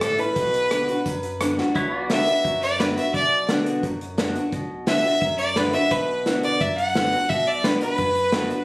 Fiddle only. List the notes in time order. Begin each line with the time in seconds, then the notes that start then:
0.02 A4
0.20 B4
2.10 E5
2.63 D5
2.80 B4
2.97 E5
3.14 D5
4.87 E5
5.38 D5
5.57 B4
5.74 E5
5.91 B4
6.44 D5
6.61 E5
6.78 F#5
7.29 E5
7.47 D5
7.65 B4
7.81 B4